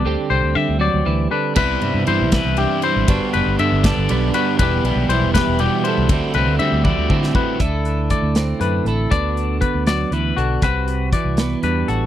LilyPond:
<<
  \new Staff \with { instrumentName = "Clean electric guitar" } { \time 6/8 \key d \mixolydian \tempo 4. = 80 d''8 c''8 e''8 d''4 b'8 | b'4 c''8 b'8 g'8 c''8~ | c''8 b'8 e''8 d''4 b'8 | b'4 c''8 b'8 g'8 c''8~ |
c''8 b'8 e''8 d''4 b'8 | a'4 d''4 b'8 a'8 | d''4 b'8 d''8 b'8 fis'8 | b'4 d''4 b'8 a'8 | }
  \new Staff \with { instrumentName = "Clean electric guitar" } { \time 6/8 \key d \mixolydian << { <g c' g'>8 c'2~ c'8 | <b d' e'>4. e'4 e'8 | <b d' fis'>8 b4 a'8 b8 fis'8 | <g d' g'>8 g4 g'8 g8 a'8 |
<c' e'>8 c'4 e'8 c'8 e'8 | e'4. c'4 e'8 | <b d' fis'>2. | fis'4. b4 fis'8 | } \\ { d4 g8 fis8 e8 d8 | c4 e4 g,4 | g,4 d4 g,4 | e,4 e4 b,4 |
d4 g4 a,4 | d4 a4 a,4 | d4 b8 fis8 e8 d8 | c4 e4 g,4 | } >> }
  \new Staff \with { instrumentName = "Overdriven electric guitar" } { \time 6/8 \key d \mixolydian r2. | <c g c' e'>8 <g c' e'>8 <c g c' e'>8 <g c' e'>8 <c g c' e'>8 <g c' e'>8 | <g, d g b d'>8 <g b d'>8 <d g b d'>8 <g b d'>8 <d g b d'>8 <g b d'>8 | <e g b e'>8 <g b e'>8 <e g b e'>8 <g b e'>8 <e g b e'>8 <g b e'>8 |
<d a c' fis'>8 <a c' fis'>8 <d a c' fis'>8 <a c' fis'>8 <d a c' fis'>8 <a c' fis'>8 | r2. | r2. | r2. | }
  \new Staff \with { instrumentName = "Fingered electric bass" } { \clef bass \time 6/8 \key d \mixolydian d,16 r16 c,16 d,16 d16 d,8 d,16 d,8 r8 | c,8 g,16 g,16 g,16 c,8 c,8 r8 aes,,16 | g,,16 r16 fis,,16 g,,16 g,16 g,,8 g,,16 b,,8 r8 | e,,8 b,,16 b,,16 b,,16 e,,8 e,,8 r8 c,16 |
d,16 r16 c,16 d,16 d16 d,8 d,16 d8 r8 | d,4~ d,16 d,8. fis,8 a,,8 | d,4~ d,16 d,8. d,8 b,,8 | c,4~ c,16 c,8. e,8 a,,8 | }
  \new DrumStaff \with { instrumentName = "Drums" } \drummode { \time 6/8 r4. r4. | <cymc bd>8 cymr8 cymr8 <bd cymr sn>8 cymr8 cymr8 | <bd cymr>8 cymr8 cymr8 <bd cymr sn>8 cymr8 cymr8 | <bd cymr>8 cymr8 cymr8 <bd cymr sn>8 cymr8 cymr8 |
<bd cymr>8 cymr8 cymr8 <bd tommh>8 bd16 sn16 bd8 | <hh bd>8 hh8 <hh bd>8 <hh sn>8 hh8 hh8 | <hh bd>8 hh8 <hh bd>8 <hh sn>8 hh8 hh8 | <hh bd>8 hh8 <hh bd>8 <hh sn>8 hh8 hh8 | }
>>